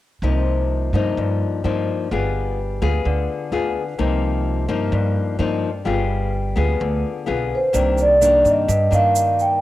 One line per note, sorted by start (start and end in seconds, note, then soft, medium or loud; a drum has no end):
0.22 0.89 C2 medium
0.22 1.14 C3 medium
0.22 0.90 F3 soft
0.22 0.90 A#3 medium
0.22 0.90 D#4 medium
0.93 1.15 G2 medium
0.93 1.60 F3 medium
0.93 1.61 A#3 medium
0.93 1.61 D#4 medium
1.17 1.39 G2 medium
1.17 2.09 G2 medium
1.64 1.86 G2 medium
1.64 2.07 F3 medium
1.64 2.07 A#3 medium
1.64 2.08 D#4 medium
2.11 2.77 G1 medium
2.11 3.03 G3 medium
2.11 2.58 B3 medium
2.11 2.58 F4 medium
2.11 2.58 G#4 medium
2.82 3.03 D2 medium
2.82 3.48 B3 medium
2.82 3.48 F4 medium
2.82 3.48 G#4 medium
3.05 3.27 D2 medium
3.05 3.97 D3 medium
3.52 3.73 D2 medium
3.52 3.82 B3 medium
3.52 3.82 F4 soft
3.52 3.82 G#4 medium
3.98 4.65 C2 medium
3.98 4.90 C3 medium
3.98 4.65 F3 medium
3.98 4.65 A#3 medium
3.98 4.66 D#4 medium
4.68 4.91 G2 medium
4.68 5.36 F3 medium
4.68 5.35 A#3 medium
4.68 5.36 D#4 medium
4.92 5.14 G2 medium
4.92 5.84 G2 medium
5.39 5.61 G2 medium
5.39 5.69 F3 medium
5.39 5.70 A#3 medium
5.39 5.70 D#4 medium
5.85 6.52 G1 medium
5.85 6.77 G3 medium
5.85 6.33 B3 medium
5.85 6.33 F4 medium
5.85 6.33 G#4 medium
6.56 6.79 D2 medium
6.56 7.23 B3 medium
6.56 7.24 F4 medium
6.56 7.24 G#4 medium
6.80 7.03 D2 loud
6.80 7.72 D3 medium
7.26 7.50 B1 medium
7.26 7.57 B3 soft
7.26 7.57 F4 medium
7.26 7.58 G#4 medium
7.55 8.01 C5 medium
7.73 8.41 C2 medium
7.73 8.65 C3 medium
7.73 8.17 D#3 soft
7.73 8.17 A#3 medium
7.73 8.17 D4 medium
7.73 shaker medium
7.98 8.48 D5 medium
7.98 shaker soft
8.21 8.68 D#3 medium
8.21 8.68 A#3 medium
8.21 8.68 D4 medium
8.21 shaker medium
8.45 8.67 G2 medium
8.45 shaker soft
8.49 8.95 D#5 medium
8.68 9.60 G2 medium
8.68 8.90 G2 medium
8.68 shaker medium
8.91 9.58 G2 medium
8.91 9.58 D#3 medium
8.91 9.58 A#3 medium
8.91 9.59 D4 medium
8.91 9.41 F5 medium
8.91 shaker soft
9.16 shaker medium
9.39 9.61 G5 medium
9.39 shaker soft